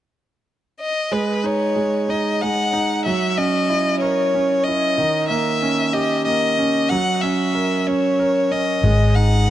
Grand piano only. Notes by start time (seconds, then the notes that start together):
1.12 G#3
1.44 D#4
1.76 G#3
2.09 D#4
2.43 G#3
2.73 D#4
3.06 F#3
3.38 C#4
3.69 E4
4.02 A#4
4.34 C#4
4.67 E4
4.98 D#3
5.30 A#3
5.62 C#4
5.94 G4
6.26 A#3
6.59 C#4
6.91 F#3
7.23 C#4
7.55 A#4
7.88 C#4
8.19 A#4
8.51 C#4
8.84 G#3
9.16 D#4